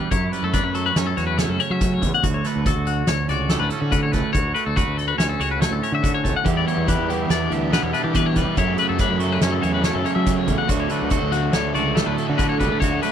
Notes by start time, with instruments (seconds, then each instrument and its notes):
Already playing: clean electric guitar G3 B4
0.11 clean electric guitar F#2 E4 C#5, fingered electric bass F#2, kick, closed hi-hat
0.32 clean electric guitar G3 B4, closed hi-hat
0.43 fingered electric bass F#2, clean electric guitar A3 A4
0.53 clean electric guitar D4 B4, kick, snare, closed hi-hat
0.64 fingered electric bass F#2, clean electric guitar E4
0.75 clean electric guitar F#3 A4, closed hi-hat
0.86 clean electric guitar B4
0.96 fingered electric bass F#2, clean electric guitar C#4 C#5, snare, closed hi-hat
1.07 clean electric guitar A4
1.17 fingered electric bass E2, clean electric guitar F#4 C#5, snare, closed hi-hat
1.27 clean electric guitar B4
1.38 clean electric guitar C#3 A3 C#5, snare, closed hi-hat
1.49 fingered electric bass F#2, clean electric guitar A4
1.59 clean electric guitar C#4 C#5, closed hi-hat
1.70 fingered electric bass F#3, clean electric guitar E5
1.81 clean electric guitar F#2, kick, snare, closed hi-hat
1.94 clean electric guitar C#5
2.01 clean electric guitar E2, fingered electric bass E2, kick, closed hi-hat
2.14 clean electric guitar F#5
2.23 clean electric guitar D2 F#4, fingered electric bass D2, kick, closed hi-hat
2.34 clean electric guitar C#5
2.44 clean electric guitar A3 B4, snare, closed hi-hat
2.56 fingered electric bass D2
2.66 clean electric guitar F#4 A4, kick, snare, closed hi-hat
2.76 fingered electric bass D2
2.87 clean electric guitar F#4, closed hi-hat
3.07 fingered electric bass D2, clean electric guitar C#4 C#5, snare, closed hi-hat
3.28 fingered electric bass C#2, clean electric guitar F#4 D5, snare, closed hi-hat
3.49 clean electric guitar A2 G3 A4, snare, closed hi-hat
3.59 fingered electric bass D2, clean electric guitar A3 B4
3.70 clean electric guitar C#4 A4, closed hi-hat
3.80 fingered electric bass D3, clean electric guitar F#4
3.91 clean electric guitar D2 F#4 B4, kick, closed hi-hat
4.03 clean electric guitar C#5
4.12 fingered electric bass C#2, clean electric guitar A3 B4, kick, snare, closed hi-hat
4.33 fingered electric bass D2, clean electric guitar F#4 C#5, kick, closed hi-hat
4.54 clean electric guitar A3 B4, closed hi-hat
4.66 fingered electric bass D2, clean electric guitar A4
4.76 clean electric guitar F#4 B4, kick, closed hi-hat
4.87 fingered electric bass D2
4.97 clean electric guitar A4, closed hi-hat
5.08 clean electric guitar B4
5.18 fingered electric bass D2, clean electric guitar C#4 C#5, snare, closed hi-hat
5.29 clean electric guitar A4
5.40 fingered electric bass C#2, clean electric guitar F#4 C#5, closed hi-hat
5.51 clean electric guitar B4
5.60 clean electric guitar A2 A3 C#5, snare, closed hi-hat
5.71 fingered electric bass D2, clean electric guitar A4
5.83 clean electric guitar C#4 C#5, closed hi-hat
5.92 fingered electric bass D3, clean electric guitar E5
6.02 clean electric guitar D2 F#4, kick, closed hi-hat
6.14 clean electric guitar C#5
6.24 fingered electric bass C#2, clean electric guitar A3, kick, closed hi-hat
6.36 clean electric guitar F#5
6.44 clean electric guitar E2 G4, fingered electric bass E2, overdriven electric guitar E3 G3 B3 E4, kick, closed hi-hat
6.57 clean electric guitar D5
6.66 clean electric guitar G3 C#5, overdriven electric guitar G3 B3 E4, closed hi-hat
6.77 fingered electric bass E2
6.88 overdriven electric guitar E3 G3 B3 E4, clean electric guitar G4 B4, kick, closed hi-hat
6.99 fingered electric bass E2
7.09 clean electric guitar E3 G4, overdriven electric guitar G3 B3 E4, closed hi-hat
7.30 fingered electric bass E2, overdriven electric guitar E3 G3 B3 E4, clean electric guitar D4 D5, snare, closed hi-hat
7.50 fingered electric bass D2, overdriven electric guitar E3 G3 B3 E4, clean electric guitar G4 E5, closed hi-hat
7.71 clean electric guitar B2 G3 B4, overdriven electric guitar E3 G3 B3 E4, snare, closed hi-hat
7.83 fingered electric bass E2, clean electric guitar C#5
7.93 overdriven electric guitar G3 B3 E4, clean electric guitar D4 B4, snare, closed hi-hat
8.04 fingered electric bass E3, clean electric guitar G4
8.13 clean electric guitar E2 G4 B4, overdriven electric guitar E3 G3 B3 E4, kick, closed hi-hat
8.26 clean electric guitar C#5
8.35 fingered electric bass C#2, clean electric guitar G3 B4, overdriven electric guitar G3 B3 E4, kick, snare, closed hi-hat
8.56 overdriven electric guitar F#2 C#3 F#3 A3 C#4, fingered electric bass F#2, clean electric guitar F#2 E4 C#5, kick, closed hi-hat
8.77 overdriven electric guitar F#3 A3 C#4, clean electric guitar A3 B4, closed hi-hat
8.89 fingered electric bass F#2, clean electric guitar A4
8.99 overdriven electric guitar F#2 C#3 F#3 A3 C#4, clean electric guitar D4 B4, kick, snare, closed hi-hat
9.10 fingered electric bass F#2, clean electric guitar E4
9.20 clean electric guitar F#3 A4, overdriven electric guitar F#3 A3 C#4, closed hi-hat
9.32 clean electric guitar B4
9.41 fingered electric bass F#2, overdriven electric guitar C#3 F#3 A3 C#4, clean electric guitar C#4 C#5, snare, closed hi-hat
9.52 clean electric guitar A4
9.62 fingered electric bass E2, overdriven electric guitar F#2 C#3 F#3 A3 C#4, clean electric guitar F#4 C#5, closed hi-hat
9.74 clean electric guitar B4
9.82 clean electric guitar C#3 A3 C#5, overdriven electric guitar C#3 F#3 A3 C#4, snare, closed hi-hat
9.95 fingered electric bass F#2, clean electric guitar A4
10.04 overdriven electric guitar F#3 A3 C#4, clean electric guitar C#4 C#5, closed hi-hat
10.15 fingered electric bass F#3, clean electric guitar E5
10.26 overdriven electric guitar F#2 C#3 F#3 A3 C#4, clean electric guitar F#2, kick, closed hi-hat
10.36 clean electric guitar C#5
10.46 fingered electric bass A1, clean electric guitar E2, overdriven electric guitar F#3 A3 C#4, kick, closed hi-hat
10.58 clean electric guitar F#5
10.68 clean electric guitar D2 F#4, fingered electric bass D2, overdriven electric guitar D3 F#3 A3 D4, kick, closed hi-hat
10.80 clean electric guitar C#5
10.89 overdriven electric guitar F#3 A3 D4, clean electric guitar A3 B4, closed hi-hat
11.02 fingered electric bass D2
11.10 overdriven electric guitar D3 F#3 A3 D4, clean electric guitar F#4 A4, kick, closed hi-hat
11.22 fingered electric bass D2
11.32 overdriven electric guitar F#3 A3 D4, clean electric guitar F#4, snare, closed hi-hat
11.52 fingered electric bass D2, overdriven electric guitar D3 F#3 A3 D4, clean electric guitar C#5, snare, closed hi-hat
11.74 fingered electric bass C#2, overdriven electric guitar D3 F#3 A3 D4, clean electric guitar F#4 D5, closed hi-hat
11.95 clean electric guitar A2 G3 A4, overdriven electric guitar D3 F#3 A3, snare, closed hi-hat
11.99 overdriven electric guitar D4
12.06 fingered electric bass D2, clean electric guitar A3 B4
12.16 overdriven electric guitar F#3 A3 D4, clean electric guitar A4, closed hi-hat
12.27 fingered electric bass D3, clean electric guitar F#4
12.37 clean electric guitar D2 F#4 B4, overdriven electric guitar D3 F#3 A3 D4, kick, snare, closed hi-hat
12.49 clean electric guitar C#5
12.59 fingered electric bass C#2, overdriven electric guitar F#3 A3 D4, clean electric guitar G3 B4, kick, closed hi-hat
12.72 clean electric guitar A3
12.80 fingered electric bass D2, overdriven electric guitar D3 F#3 A3 D4, clean electric guitar F#4 C#5, kick, closed hi-hat
13.02 overdriven electric guitar F#3 A3 D4, clean electric guitar A3 B4, closed hi-hat